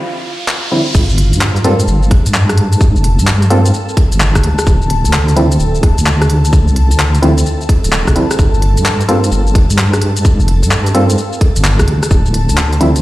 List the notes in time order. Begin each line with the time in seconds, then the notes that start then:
Already playing: F4 F5, riser
0.48 clap
0.71 D3 F3 G3 C4 E4
0.95 G1 A4 A5, kick, crash, shaker
1.10 shaker
1.18 closed hi-hat
1.33 G2, closed hi-hat, shaker
1.41 clap, shaker
1.56 closed hi-hat, shaker
1.64 G3 A#3 C4 F4 A4, closed hi-hat
1.80 closed hi-hat, shaker
1.88 G1, shaker
2.03 shaker
2.11 kick, cross-stick, closed hi-hat
2.26 G2, closed hi-hat, shaker
2.34 clap, shaker
2.49 cross-stick, closed hi-hat, shaker
2.58 closed hi-hat
2.73 closed hi-hat, shaker
2.81 kick, shaker
2.96 F1, shaker
3.04 closed hi-hat
3.19 G2, closed hi-hat, shaker
3.27 clap, shaker
3.42 closed hi-hat, shaker
3.50 G3 A#3 C4 F4 A4, closed hi-hat
3.66 closed hi-hat, shaker
3.74 shaker
3.89 shaker
3.97 kick, closed hi-hat
4.12 G1, closed hi-hat, shaker
4.20 clap, shaker
4.35 kick, cross-stick, closed hi-hat, shaker
4.43 D2, closed hi-hat
4.59 cross-stick, closed hi-hat, shaker
4.67 D1, kick, shaker
4.82 shaker
4.90 closed hi-hat
5.05 D2, closed hi-hat, shaker
5.13 clap, shaker
5.28 closed hi-hat, shaker
5.36 D3 F3 G3 C4 E4, closed hi-hat
5.52 closed hi-hat, shaker
5.60 D1, shaker
5.75 shaker
5.83 kick, cross-stick, closed hi-hat
5.98 D2, closed hi-hat, shaker
6.06 clap, shaker
6.22 cross-stick, closed hi-hat, shaker
6.30 closed hi-hat
6.45 closed hi-hat, shaker
6.53 kick, shaker
6.68 C2, shaker
6.76 closed hi-hat
6.91 D2, closed hi-hat, shaker
7.00 clap, shaker
7.15 closed hi-hat, shaker
7.22 D3 F3 G3 C4 E4, closed hi-hat
7.38 closed hi-hat, shaker
7.46 shaker
7.61 shaker
7.69 kick, closed hi-hat
7.84 D1, closed hi-hat, shaker
7.92 clap, shaker
8.07 C2, kick, cross-stick, closed hi-hat, shaker
8.16 D3 F3 G3 C4 E4, closed hi-hat
8.31 cross-stick, closed hi-hat, shaker
8.39 G1, kick, shaker
8.54 shaker
8.62 closed hi-hat
8.77 G2, closed hi-hat, shaker
8.86 clap, shaker
9.01 closed hi-hat, shaker
9.08 G3 A#3 C4 F4 A4, closed hi-hat
9.24 closed hi-hat, shaker
9.32 G1, shaker
9.47 shaker
9.55 kick, cross-stick, closed hi-hat
9.70 G2, closed hi-hat, shaker
9.78 clap, shaker
9.93 cross-stick, closed hi-hat, shaker
10.02 closed hi-hat
10.17 closed hi-hat, shaker
10.25 kick, shaker
10.40 F1, shaker
10.48 closed hi-hat
10.63 G2, closed hi-hat, shaker
10.71 clap, shaker
10.86 closed hi-hat, shaker
10.95 G3 A#3 C4 F4 A4, closed hi-hat
11.10 closed hi-hat, shaker
11.18 shaker
11.33 shaker
11.41 kick, closed hi-hat
11.56 G1, closed hi-hat, shaker
11.64 clap, shaker
11.79 kick, cross-stick, closed hi-hat, shaker
11.88 D2, closed hi-hat
12.03 cross-stick, closed hi-hat, shaker
12.11 D1, kick, shaker
12.26 shaker
12.34 closed hi-hat
12.49 D2, closed hi-hat, shaker
12.57 clap, shaker
12.73 closed hi-hat, shaker
12.81 D3 F3 G3 C4 E4, closed hi-hat
12.96 closed hi-hat, shaker